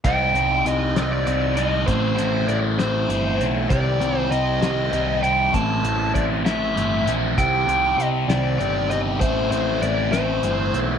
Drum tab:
HH |xxxxxx|xxxxxx|xxxxxx|xxxxxx|
SD |---o--|---o--|---o--|---o--|
BD |o-----|o-----|o-----|o-o---|

HH |xxxxxx|xxxxxx|
SD |---o--|---o--|
BD |o-----|o-----|